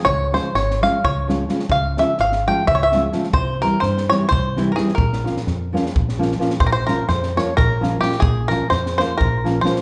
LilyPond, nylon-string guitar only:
\new Staff \with { instrumentName = "Nylon-string guitar" } { \time 7/8 \tempo 4 = 128 r8 <f aes des' f'>8 r8 <f aes des' f'>8 r8 <f aes des' f'>8 <f aes des' f'>8 | r8 <f aes des' f'>8 r8 <f aes des' f'>8 r8 <f aes des' f'>8 <f aes des' f'>8 | r8 <e g c' e'>8 r8 <e g c' e'>8 r8 <e g c' e'>8 <e g c' e'>8 | r8 <f bes des' f'>8 r8 <f bes des' f'>8 r8 <f bes des' f'>8 <f bes des' f'>8 |
r8 <f bes des' f'>8 r8 <f bes des' f'>8 r8 <f bes des' f'>8 <f bes des' f'>8 | r8 <f bes des' f'>8 r8 <f bes des' f'>8 r8 <f bes des' f'>8 <f bes des' f'>8 | }